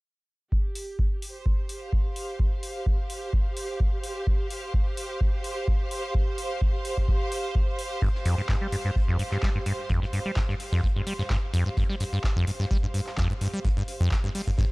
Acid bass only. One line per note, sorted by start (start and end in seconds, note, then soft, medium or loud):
8.02 8.09 G2 medium
8.26 8.36 F2 loud
8.38 8.42 G2 medium
8.49 8.56 G2 medium
8.61 8.67 G3 medium
8.72 8.77 G2 medium
8.85 8.91 G2 medium
9.08 9.17 F2 medium
9.19 9.23 G2 medium
9.32 9.38 G2 medium
9.43 9.50 G3 medium
9.55 9.59 G2 medium
9.66 9.73 G2 medium
9.90 10.00 F2 loud
10.02 10.06 G2 medium
10.13 10.20 G2 medium
10.26 10.32 G3 medium
10.37 10.41 G2 medium
10.49 10.55 G2 medium
10.72 10.81 F2 loud
10.83 10.88 G2 medium
10.96 11.02 G2 medium
11.07 11.14 G3 medium
11.19 11.23 G2 medium
11.30 11.37 G2 medium
11.54 11.64 F2 loud
11.66 11.70 G2 medium
11.77 11.84 G2 medium
11.89 11.96 G3 medium
12.00 12.05 G2 medium
12.13 12.19 G2 medium
12.36 12.45 F2 loud
12.47 12.51 G2 medium
12.60 12.66 G2 medium
12.71 12.78 G3 medium
12.83 12.87 G2 medium
12.94 13.01 G2 medium
13.18 13.28 F2 loud
13.30 13.34 G2 medium
13.41 13.48 G2 medium
13.54 13.60 G3 medium
13.65 13.69 G2 medium
13.77 13.83 G2 medium
14.00 14.10 F2 loud
14.11 14.16 G2 medium
14.24 14.30 G2 medium
14.35 14.42 G3 medium
14.47 14.51 G2 medium
14.58 14.65 G2 medium